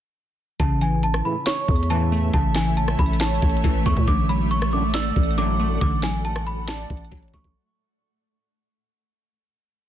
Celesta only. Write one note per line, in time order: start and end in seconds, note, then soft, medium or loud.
0.60 0.78 A5 medium
0.82 1.00 G#5 medium
1.04 1.21 A5 medium
1.25 1.43 B5 medium
1.47 1.87 C#6 medium
1.90 2.31 A5 medium
2.34 2.52 A5 medium
2.56 2.74 G#5 medium
2.77 2.95 A5 medium
2.99 3.17 B5 medium
3.21 3.82 A5 loud
3.86 4.04 C#6 medium
4.08 4.26 D6 medium
4.29 4.47 B5 medium
4.51 4.69 C#6 medium
4.73 4.91 D6 medium
4.94 5.35 E6 loud
5.38 5.79 D6 medium
5.81 5.99 D6 medium
6.03 6.21 G#5 medium
6.25 6.43 A5 medium
6.47 6.65 B5 medium
6.68 7.30 A5 medium
7.34 7.52 C#6 medium